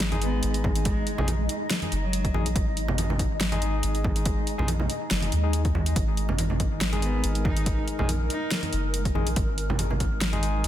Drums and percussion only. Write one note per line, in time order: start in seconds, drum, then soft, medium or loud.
0.00 snare loud
0.00 closed hi-hat medium
0.12 closed hi-hat soft
0.12 high conga medium
0.22 closed hi-hat medium
0.43 closed hi-hat medium
0.54 closed hi-hat soft
0.64 kick loud
0.64 high conga medium
0.76 closed hi-hat medium
0.85 kick loud
0.85 closed hi-hat medium
1.07 closed hi-hat medium
1.18 low conga loud
1.28 closed hi-hat medium
1.28 high conga medium
1.49 closed hi-hat medium
1.70 snare loud
1.70 closed hi-hat medium
1.82 closed hi-hat soft
1.82 high conga medium
1.92 closed hi-hat medium
2.13 closed hi-hat medium
2.25 kick medium
2.25 closed hi-hat soft
2.34 high conga loud
2.46 closed hi-hat medium
2.56 kick loud
2.56 closed hi-hat medium
2.77 closed hi-hat medium
2.88 low conga loud
2.98 closed hi-hat medium
2.98 high conga loud
3.10 low conga medium
3.19 kick medium
3.19 closed hi-hat medium
3.41 snare loud
3.41 closed hi-hat medium
3.52 closed hi-hat soft
3.52 high conga medium
3.62 closed hi-hat medium
3.83 closed hi-hat medium
3.95 closed hi-hat soft
4.04 kick loud
4.04 high conga loud
4.16 closed hi-hat medium
4.25 kick loud
4.25 closed hi-hat medium
4.47 closed hi-hat medium
4.59 low conga medium
4.68 closed hi-hat medium
4.68 high conga loud
4.79 low conga medium
4.90 closed hi-hat medium
5.11 snare loud
5.11 closed hi-hat medium
5.22 closed hi-hat soft
5.22 high conga medium
5.32 closed hi-hat soft
5.53 closed hi-hat medium
5.65 kick medium
5.65 closed hi-hat soft
5.75 high conga loud
5.86 closed hi-hat medium
5.96 kick loud
5.96 closed hi-hat medium
6.17 closed hi-hat soft
6.29 low conga medium
6.39 closed hi-hat medium
6.39 high conga loud
6.50 low conga medium
6.60 kick medium
6.60 closed hi-hat medium
6.81 snare loud
6.81 closed hi-hat medium
6.93 closed hi-hat soft
6.93 high conga medium
7.02 closed hi-hat medium
7.24 closed hi-hat medium
7.35 closed hi-hat soft
7.45 kick loud
7.45 high conga loud
7.57 closed hi-hat medium
7.66 kick loud
7.66 closed hi-hat medium
7.88 closed hi-hat soft
7.99 low conga medium
8.09 closed hi-hat medium
8.09 high conga medium
8.30 closed hi-hat medium
8.51 snare loud
8.51 closed hi-hat medium
8.63 closed hi-hat soft
8.63 high conga medium
8.73 closed hi-hat soft
8.94 closed hi-hat medium
9.05 kick medium
9.05 closed hi-hat soft
9.15 high conga medium
9.27 closed hi-hat medium
9.36 kick loud
9.36 closed hi-hat medium
9.58 closed hi-hat soft
9.70 low conga loud
9.79 closed hi-hat medium
9.79 high conga medium
9.91 low conga medium
10.00 kick medium
10.00 closed hi-hat medium
10.21 snare loud
10.21 closed hi-hat medium
10.33 closed hi-hat soft
10.33 high conga medium
10.43 closed hi-hat medium
10.64 closed hi-hat medium